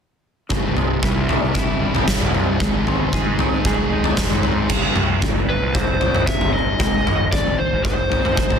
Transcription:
0.49 picked electric bass C1, clean electric guitar C2, distorted electric guitar C2 G2 C3, kick, floor tom
0.76 distorted electric guitar C2 G2 C3, clean electric guitar C3, floor tom
1.02 distorted electric guitar C2 G2 C3, picked electric bass C2, clean electric guitar E4, kick
1.27 distorted electric guitar C2 G2 C3, clean electric guitar G3, floor tom
1.42 picked electric bass C2
1.53 distorted electric guitar C2 G2 C3, clean electric guitar E4, kick, floor tom
1.79 picked electric bass G1, distorted electric guitar C2 G2 C3, clean electric guitar G3
1.95 floor tom
2.06 distorted electric guitar C2 G2 C3, clean electric guitar G2, kick, snare
2.21 picked electric bass C2, mid tom
2.32 distorted electric guitar C2 G2 C3, clean electric guitar C3, floor tom
2.59 picked electric bass G#1, distorted electric guitar G#2 D#3 G#3, clean electric guitar G#2, kick, floor tom
2.85 distorted electric guitar G#2 D#3 G#3, clean electric guitar C4, floor tom
3.12 distorted electric guitar G#2 D#3 G#3, picked electric bass G#2, clean electric guitar G#4, kick
3.38 distorted electric guitar G#2 D#3 G#3, clean electric guitar D#4, floor tom
3.52 picked electric bass G#2
3.65 distorted electric guitar G#2 D#3 G#3, clean electric guitar G#4, kick, floor tom
3.90 picked electric bass D#1, distorted electric guitar G#2 D#3 G#3, clean electric guitar D#4
4.04 floor tom
4.17 distorted electric guitar G#2 D#3 G#3, clean electric guitar G#3, kick, snare
4.30 picked electric bass G#2, mid tom
4.41 distorted electric guitar G#2 D#3 G#3, clean electric guitar C4, floor tom
4.67 clean electric guitar C2 G2 C3, picked electric bass C2, kick, floor tom, crash
4.95 clean electric guitar C2 G2, mid tom
5.21 picked electric bass G1, clean electric guitar C2 G2, kick, floor tom
5.49 clean electric guitar C2 G2, lead electric guitar B4
5.62 picked electric bass C2
5.74 clean electric guitar C2 G2, lead electric guitar C5, kick, floor tom, mid tom
6.00 clean electric guitar C2 G2, picked electric bass C2, floor tom
6.14 mid tom
6.26 clean electric guitar C2 G2 C3, lead electric guitar E5, kick
6.40 picked electric bass G1, floor tom
6.52 clean electric guitar C2 G2, lead electric guitar D#5
6.79 picked electric bass G#1, clean electric guitar G#2 D#3 G#3, kick, floor tom
7.06 clean electric guitar G#2 D#3, mid tom
7.32 picked electric bass G#1, clean electric guitar G#2 D#3, lead electric guitar D5, kick, floor tom
7.57 clean electric guitar G#2 D#3, lead electric guitar C5
7.73 picked electric bass G#1
7.84 clean electric guitar G#2 D#3, lead electric guitar C5, kick, floor tom, mid tom
8.09 picked electric bass G#1, clean electric guitar G#2 D#3, floor tom
8.25 mid tom
8.35 clean electric guitar G#2 D#3 G#3, kick
8.50 picked electric bass G#1, floor tom

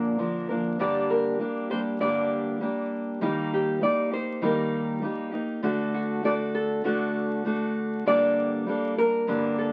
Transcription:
Already playing: steel-string acoustic guitar A#2 D3 F3 A#3 D4 A#4, nylon-string guitar D5
0.19 steel-string acoustic guitar F3 A#3 D4 A#4
0.49 steel-string acoustic guitar F3 A#3 D4 A#4
0.79 steel-string acoustic guitar G2 D3 G3 A#3 D4 G4, nylon-string guitar D5
1.10 nylon-string guitar A#4
1.39 steel-string acoustic guitar G3 A#3 D4 G4
1.70 steel-string acoustic guitar G3 A#3 D4 G4, nylon-string guitar C5
2.00 steel-string acoustic guitar G2 D3 G3 A#3 D4 G4, nylon-string guitar D5
2.60 steel-string acoustic guitar G3 A#3 D4 G4
3.21 steel-string acoustic guitar D#3 G3 A#3 D#4 G4
3.53 nylon-string guitar G4
3.81 steel-string acoustic guitar G3 A#3 D#4 G4, nylon-string guitar D5
4.11 steel-string acoustic guitar A#3 D#4 G4, nylon-string guitar C5
4.41 steel-string acoustic guitar D#3 G3 A#3 D#4 G4, nylon-string guitar A#4
5.02 steel-string acoustic guitar G3 A#3 D#4 G4
5.32 steel-string acoustic guitar A#3 D#4 G4
5.63 steel-string acoustic guitar D3 A3 D4 F#4 A4
5.94 nylon-string guitar F#4
6.23 steel-string acoustic guitar A3 D4 F#4 A4, nylon-string guitar D5
6.55 nylon-string guitar A4
6.84 steel-string acoustic guitar D3 A3 D4 F#4 A4
7.45 steel-string acoustic guitar A3 D4 F#4 A4
8.06 steel-string acoustic guitar G2 D3 G3 A#3 D4 A4, nylon-string guitar D5
8.66 steel-string acoustic guitar G3 A#3 D4 A4
8.97 steel-string acoustic guitar G3 A#3 D4, nylon-string guitar A#4
9.27 steel-string acoustic guitar G2 D3 G3 A#3 D4
9.58 nylon-string guitar A4

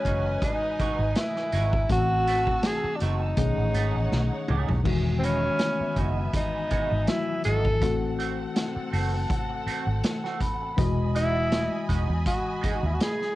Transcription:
Already playing: tine electric piano E3 G#3 F#4 D#5, tenor saxophone C#4, string section B4 D#5 G#5, vibraphone D#5
0.05 fingered electric bass F#1, clean electric guitar G#3 D#4 F#4, kick, closed hi-hat
0.27 muted clean electric guitar stroke
0.42 tenor saxophone D#4, muted clean electric guitar stroke, kick, closed hi-hat
0.63 muted clean electric guitar stroke
0.80 clean electric guitar G#3 D#4 F#4, muted fingered electric bass stroke, kick, closed hi-hat
0.99 fingered electric bass G#1, muted clean electric guitar stroke
1.15 tenor saxophone E4, muted clean electric guitar stroke, snare, closed hi-hat
1.36 muted clean electric guitar stroke, snare
1.52 fingered electric bass G#1, clean electric guitar G#3 D#4 F#4, closed hi-hat
1.73 muted clean electric guitar stroke, kick
1.88 fingered electric bass A1, tine electric piano E3 A3 C4 F#4, string section F#4 A5 E6, tenor saxophone F#4, kick, closed hi-hat
2.27 clean electric guitar A3 C4 F#4, closed hi-hat
2.47 kick
2.63 tenor saxophone G#4, muted clean electric guitar stroke, snare, closed hi-hat
2.84 muted fingered electric bass stroke, muted clean electric guitar stroke
2.96 tenor saxophone D4
3.00 fingered electric bass F#1, clean electric guitar A3 C4 F#4, tenor saxophone D#4, closed hi-hat
3.22 muted clean electric guitar stroke
3.36 fingered electric bass B1, tine electric piano D#3 A3 C#4 G#4, string section D#4 C#5 F#5, muted clean electric guitar stroke, kick, closed hi-hat
3.58 fingered electric bass A1, muted clean electric guitar stroke
3.74 fingered electric bass G#1, clean electric guitar A3 D#4 G#4, closed hi-hat
3.95 fingered electric bass A1, muted clean electric guitar stroke
4.12 fingered electric bass B1, muted clean electric guitar stroke, snare
4.32 muted clean electric guitar stroke
4.48 fingered electric bass C#2, clean electric guitar A3 D#4 G#4, mid tom
4.69 fingered electric bass B1, muted clean electric guitar stroke, floor tom
4.84 fingered electric bass E1, tine electric piano D#3 E3 G#3 F#4, string section B3 E5 G#5, kick, crash
5.19 tenor saxophone C4
5.23 clean electric guitar G#3 D#4 F#4, tenor saxophone C#4, vibraphone B5, closed hi-hat
5.59 muted clean electric guitar stroke, snare, closed hi-hat
5.80 muted fingered electric bass stroke, muted clean electric guitar stroke
5.96 fingered electric bass F#1, clean electric guitar G#3 D#4 F#4, kick, closed hi-hat
6.18 muted clean electric guitar stroke
6.33 tenor saxophone D#4, muted clean electric guitar stroke, kick, closed hi-hat
6.55 muted clean electric guitar stroke
6.70 clean electric guitar G#3 D#4 F#4, muted fingered electric bass stroke, kick, closed hi-hat
6.91 fingered electric bass G#1, muted clean electric guitar stroke
7.07 tine electric piano E3 F#3 E4 F#4, tenor saxophone E4, muted clean electric guitar stroke, snare, closed hi-hat
7.29 muted clean electric guitar stroke
7.44 fingered electric bass G#1, clean electric guitar G#3 D#4 F#4, tenor saxophone A4, closed hi-hat
7.65 muted clean electric guitar stroke, kick
7.80 fingered electric bass A1, tine electric piano E3 A3 C4 F#4, string section C4 A4 F#5, kick, closed hi-hat
8.18 clean electric guitar A3 C4 F#4, closed hi-hat
8.56 muted clean electric guitar stroke, snare, closed hi-hat
8.76 muted clean electric guitar stroke, muted fingered electric bass stroke
8.92 fingered electric bass F#1, clean electric guitar A3 C4 F#4, vibraphone A5, open hi-hat
9.13 muted clean electric guitar stroke
9.30 muted clean electric guitar stroke, kick, closed hi-hat
9.50 muted clean electric guitar stroke
9.66 clean electric guitar A3 C4 F#4, muted fingered electric bass stroke, closed hi-hat
9.87 fingered electric bass G#1, muted clean electric guitar stroke
10.04 muted clean electric guitar stroke, snare, closed hi-hat
10.24 clean electric guitar A3 C4 F#4, snare
10.41 vibraphone B5, muted clean electric guitar stroke, kick, closed hi-hat
10.62 muted clean electric guitar stroke
10.77 fingered electric bass E1, tine electric piano E3 G#3 F#4 D#5, string section D#5 G#5 B5, kick, closed hi-hat
11.15 clean electric guitar G#3 D#4 F#4, tenor saxophone E4, closed hi-hat
11.52 muted clean electric guitar stroke, snare, closed hi-hat
11.72 muted clean electric guitar stroke
11.89 fingered electric bass E1, clean electric guitar G#3 D#4 F#4, kick, closed hi-hat
12.09 fingered electric bass E2, muted clean electric guitar stroke
12.26 tenor saxophone F#4, muted clean electric guitar stroke, kick, closed hi-hat
12.46 muted clean electric guitar stroke
12.61 clean electric guitar G#3 D#4 F#4, tenor saxophone G#4, muted fingered electric bass stroke, kick, closed hi-hat
12.75 tenor saxophone F#4
12.82 fingered electric bass D#2, tenor saxophone E4, muted clean electric guitar stroke
12.94 tenor saxophone F#4
12.99 tenor saxophone G#4, muted clean electric guitar stroke, snare, closed hi-hat
13.19 muted clean electric guitar stroke, snare

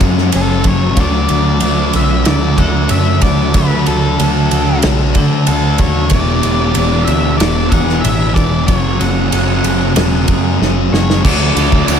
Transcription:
Already playing: distorted electric guitar F#2, clean electric guitar F#3 C#4, overdriven electric guitar F#3 A3 C#4 F#4
0.00 picked electric bass F#2, distorted electric guitar C#3 F#3, kick, ride
0.18 snare
0.32 picked electric bass F#1, distorted electric guitar F#2 C#3 F#3, clean electric guitar C#4, lead electric guitar A4, ride
0.64 picked electric bass F#1, clean electric guitar F#3, lead electric guitar C#5, kick, ride
0.97 picked electric bass D2, distorted electric guitar D3 A3, overdriven electric guitar D3 F#3 A3 D4 F#4, clean electric guitar F#3, lead electric guitar D5, kick, ride
1.01 distorted electric guitar D4
1.29 picked electric bass D2, ride
1.60 picked electric bass D2, distorted electric guitar D3 A3, ride
1.65 distorted electric guitar D4
1.93 picked electric bass B1, clean electric guitar F#3, lead electric guitar E5, ride
2.25 picked electric bass D2, distorted electric guitar D3 A3 D4, lead electric guitar D5, snare, ride
2.58 picked electric bass D2, distorted electric guitar D4, clean electric guitar A4, lead electric guitar F#5, kick, ride
2.62 distorted electric guitar A3
2.89 picked electric bass F#2, distorted electric guitar D3 A3, lead electric guitar E5, ride
2.94 distorted electric guitar D4
3.21 picked electric bass D2, clean electric guitar F#3, lead electric guitar D5, kick, ride
3.53 picked electric bass D2, distorted electric guitar D3 A3, clean electric guitar F#3, lead electric guitar B4, kick, ride
3.58 distorted electric guitar D4
3.86 picked electric bass D2, lead electric guitar A4, ride
4.19 picked electric bass D2, distorted electric guitar D3 A3 D4, ride
4.51 picked electric bass D2, clean electric guitar F#3, ride
4.82 picked electric bass B1, distorted electric guitar D3 A3 D4, snare, ride
5.15 picked electric bass D3, distorted electric guitar D4, clean electric guitar A4, kick, ride
5.20 distorted electric guitar A3
5.47 picked electric bass D2, distorted electric guitar D3 A3, lead electric guitar A4, ride
5.52 distorted electric guitar D4
5.78 picked electric bass D#2, clean electric guitar F#3, lead electric guitar C#5, kick, ride
6.10 picked electric bass E1, distorted electric guitar E2, clean electric guitar E3, overdriven electric guitar E3 B3 D4, lead electric guitar D5, kick, ride
6.14 distorted electric guitar B2 E3, overdriven electric guitar G#4
6.43 picked electric bass E1, ride
6.75 picked electric bass E1, distorted electric guitar E2 B2, clean electric guitar D4, ride
6.79 distorted electric guitar E3
7.05 picked electric bass D2, clean electric guitar E3, lead electric guitar E5, ride
7.38 picked electric bass E1, distorted electric guitar E2 B2, clean electric guitar D4, lead electric guitar D5, snare, ride
7.42 distorted electric guitar E3
7.69 picked electric bass E1, distorted electric guitar E3, clean electric guitar G#4, lead electric guitar F#5, kick, ride
7.73 distorted electric guitar B2
7.89 snare
8.01 picked electric bass A1, distorted electric guitar E2 B2, clean electric guitar D4, lead electric guitar E5, ride
8.05 distorted electric guitar E3
8.34 picked electric bass E1, clean electric guitar E3, lead electric guitar D5, kick, ride
8.66 picked electric bass F#1, distorted electric guitar F#2 C#3, overdriven electric guitar F#3 A3 C#4 F#4, clean electric guitar F#3, lead electric guitar C#5, kick, ride
8.70 distorted electric guitar F#3
8.99 picked electric bass F#1, lead electric guitar F#5, ride
9.30 picked electric bass F#1, distorted electric guitar F#2 C#3 F#3, clean electric guitar C#4, ride
9.64 picked electric bass F#1, clean electric guitar F#3, ride
9.95 picked electric bass E1, distorted electric guitar F#2 C#3 F#3, clean electric guitar C#4, snare, ride
10.25 picked electric bass F#2, distorted electric guitar C#3 F#3, kick, ride
10.30 clean electric guitar G#4
10.59 picked electric bass F#1, distorted electric guitar F#2 C#3 F#3, clean electric guitar C#4, snare
10.91 picked electric bass F#1, clean electric guitar F#3, lead electric guitar C#5, snare
11.10 snare
11.23 picked electric bass D2, distorted electric guitar D3 A3 D4, overdriven electric guitar D3 F#3 A3, clean electric guitar E3, lead electric guitar D5, kick, crash
11.27 overdriven electric guitar D4
11.55 picked electric bass D2, overdriven electric guitar D3 F#3 A3, clean electric guitar A3, ride
11.60 overdriven electric guitar D4
11.72 overdriven electric guitar A3 D4, distorted electric guitar D4, kick
11.76 overdriven electric guitar F#3, distorted electric guitar A3
11.87 picked electric bass D2, distorted electric guitar D3 A3, overdriven electric guitar D3 F#3, clean electric guitar F#4, lead electric guitar D5, ride, tambourine
11.92 overdriven electric guitar A3 D4, distorted electric guitar D4

